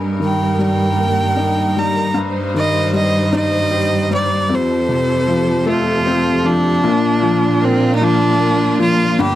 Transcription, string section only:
Already playing: G2 G3 D#4 A#4
2.16 G2 G3 C5
4.51 F2 F3 G4 A4
6.86 A#2 A#3 D4 F4
9.17 G2 G3

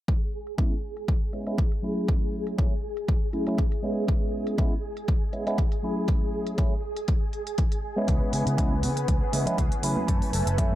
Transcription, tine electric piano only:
0.58 G#3 B3 C#4 E4
1.33 G#3 B3 C#4 E4
1.47 G#3 B3 C#4 E4
1.82 F#3 A3 C#4 E4
2.58 F#3 A3 C#4 E4
3.33 F#3 A3 C#4 E4
3.47 F#3 A3 C#4 E4
3.83 G#3 B3 C#4 E4
4.58 G#3 B3 C#4 E4
5.32 G#3 B3 C#4 E4
5.46 G#3 B3 C#4 E4
5.83 F#3 A3 C#4 E4
6.58 F#3 A3 C#4 E4
7.96 G#3 B3 C#4 E4
8.58 G#3 B3 C#4 E4
9.33 G#3 B3 C#4 E4
9.46 G#3 B3 C#4 E4
9.82 F#3 A3 C#4 E4
10.58 F#3 A3 C#4 E4

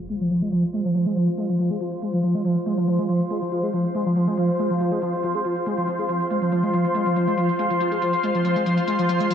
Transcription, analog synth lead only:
0.09 G#3
0.21 F3
0.31 F3
0.42 G#3
0.52 F3
0.73 G#3
0.85 F3
0.95 F3
1.06 G#3
1.16 F3
1.38 G#3
1.49 F3
1.59 F3
1.70 G#3
1.81 F3
2.02 G#3
2.13 F3
2.23 F3
2.35 G#3
2.45 F3
2.66 G#3
2.77 F3
2.88 F3
2.99 G#3
3.09 F3
3.30 G#3
3.42 F3
3.52 F3
3.63 G#3
3.73 F3
3.95 G#3
4.06 F3
4.16 F3
4.28 G#3
4.38 F3
4.59 G#3
4.70 F3
4.81 F3
4.92 G#3
5.02 F3
5.23 F3
5.35 G#3
5.45 F3
5.66 G#3
5.78 F3
5.88 F3
5.99 G#3
6.09 F3
6.31 G#3
6.42 F3
6.52 F3
6.63 G#3
6.73 F3
6.95 G#3
7.06 F3
7.16 F3
7.27 G#3
7.38 F3
7.59 G#3
7.70 F3
7.81 F3
7.92 G#3
8.02 F3
8.23 G#3
8.35 F3
8.45 F3
8.56 G#3
8.66 F3
8.88 G#3
8.99 F3
9.09 F3
9.20 G#3
9.30 F3

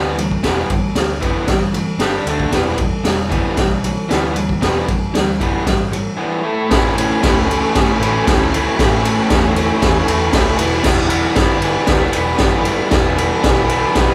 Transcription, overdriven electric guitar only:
Already playing: E3 G3 B3
0.17 E3 G3
0.43 E3 G3 B3
0.70 E3 G3
0.96 E3 G3
1.21 E3 G3 B3
1.49 E3 G3
1.74 E3 G3
2.00 G3 D4 G4
2.26 D3 A3 D4
2.52 E3 G3 B3
2.78 E3 G3
3.04 E3 G3
3.29 E3 G3 B3
3.58 E3 G3
3.84 E3 G3
4.08 E3 G3 B3
4.35 E3 G3
4.62 E3 G3 B3
4.88 E3 G3
5.14 E3 G3
5.40 E3 G3 B3
5.66 E3 G3
5.92 E3 G3
6.17 E3 G3 B3
6.43 A3 E4 A4
6.69 A2 E3 A3 C#4 E4
6.94 A2 E3 A3 C#4 E4
7.21 A2 E3 A3 C#4 E4
7.47 A2 E3 A3 C#4 E4
7.73 A2 E3 A3 C#4 E4
7.99 A2 E3 A3 C#4 E4
8.26 A2 E3 A3 C#4 E4
8.51 A2 E3 A3 C#4 E4
8.76 A2 E3 A3 C#4 E4
9.02 A2 E3 A3 C#4 E4
9.28 A2 E3 A3 C#4 E4
9.53 A2 E3 A3 C#4 E4
9.79 A2 E3 A3 C#4 E4
10.06 A2 E3 A3 C#4
10.10 E4
10.32 A2 E3 A3 C#4 E4
10.57 E3 G3 B3 E4
10.83 E3 G3 B3 E4
11.08 E3 G3 B3 E4
11.34 E3 G3 B3 E4
11.60 E3 G3 B3 E4
11.87 E3 G3 B3 E4
12.12 E3 G3 B3 E4
12.39 E3 G3 B3 E4
12.65 E3 G3 B3 E4
12.90 E3 G3 B3 E4
13.16 E3 G3 B3 E4
13.41 E3 G3 B3 E4
13.67 E3 G3 B3 E4
13.94 E3 G3 B3 E4

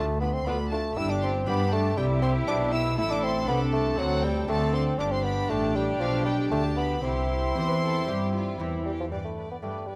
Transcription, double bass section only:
Already playing: D2
0.46 D2
0.96 G1
1.47 G2
1.98 C2
2.47 B1
2.97 A1
3.48 C2
3.98 D2
4.48 D2
4.99 G1
5.50 A1
6.00 B1
6.51 D2
7.02 C2
7.55 E2
8.07 G2
8.59 E2

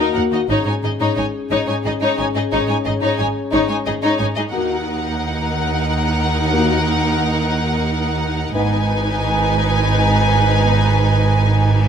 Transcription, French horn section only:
Already playing: A#3 F#4
0.49 C#4 G#4
4.52 A#3 F#4
6.53 A#3 F#4
8.54 B3 D#4
10.62 B3 D#4

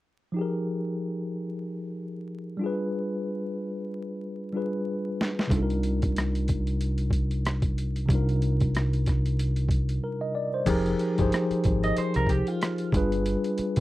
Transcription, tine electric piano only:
0.32 F3 D#4
0.37 G4 G#4
0.41 A#4
2.57 G3 D4
2.61 F4 G#4
2.66 B4
4.53 G3 D4 F4 G#4
4.57 B4
5.47 C3 G3 D4
5.52 D#4 F4 A4
5.63 A#4
8.06 C3 G3 D4
8.11 D#4 F4 A#4
10.04 A#4
10.21 D#5
10.35 D5
10.54 C5
10.65 F3 D#4 G4 G#4
10.70 A#4
11.17 F3 D#4 G4 G#4
11.21 C5
12.93 G3 D4 F4 G#4
12.97 B4

